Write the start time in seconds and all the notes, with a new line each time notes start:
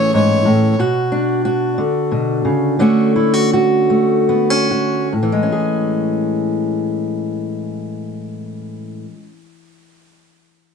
Already playing: A2 E3 C#4 G#4 C#5
0.14 G#2 C#5
0.45 A2
0.79 B2 F#4
1.12 D4
1.45 F#4
1.78 D3
2.11 B2
2.45 C#3
2.79 D3 A3 C#4 F#4
3.16 E4
3.34 F#4
3.53 F#4
3.90 A3
4.29 B3
4.50 C#4
4.71 F#4
5.13 A2
5.23 E3
5.32 G#3
5.43 C#4
5.52 G#4